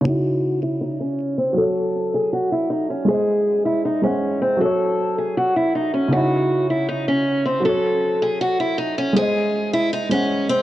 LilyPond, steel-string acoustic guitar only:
\new Staff \with { instrumentName = "Steel-string acoustic guitar" } { \time 4/4 \key cis \minor \tempo 4 = 158 fis'4. e'8 dis'8 cis'4 bis8 | a'4. gis'8 fis'8 e'8 dis'8 cis'8 | gis'4. e'8 dis'8 cis'4 bis8 | a'4. gis'8 fis'8 e'8 dis'8 cis'8 |
fis'4. e'8 dis'8 cis'4 bis8 | a'4. gis'8 fis'8 e'8 dis'8 cis'8 | gis'4. e'8 dis'8 cis'4 bis8 | }